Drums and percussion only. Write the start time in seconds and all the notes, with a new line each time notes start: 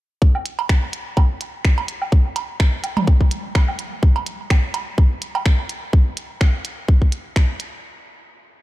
0.22 kick
0.35 low woodblock
0.46 closed hi-hat
0.59 cowbell
0.69 finger snap, kick
0.93 closed hi-hat
1.17 kick, cowbell, low woodblock
1.41 closed hi-hat
1.65 finger snap, kick
1.78 cowbell
1.88 closed hi-hat
2.02 low woodblock
2.12 kick
2.36 closed hi-hat, cowbell
2.60 finger snap, kick
2.84 closed hi-hat, low woodblock
2.97 mid tom, cowbell
3.07 kick
3.21 kick
3.31 closed hi-hat
3.55 finger snap, kick, cowbell
3.68 low woodblock
3.79 closed hi-hat
4.03 kick
4.16 cowbell
4.26 closed hi-hat
4.50 finger snap, kick, low woodblock
4.74 closed hi-hat, cowbell
4.98 kick
5.22 closed hi-hat
5.35 cowbell, low woodblock
5.46 finger snap, kick
5.69 closed hi-hat
5.93 kick
6.17 closed hi-hat
6.41 finger snap, kick
6.65 closed hi-hat
6.88 kick
7.02 kick
7.12 closed hi-hat
7.36 finger snap, kick
7.60 closed hi-hat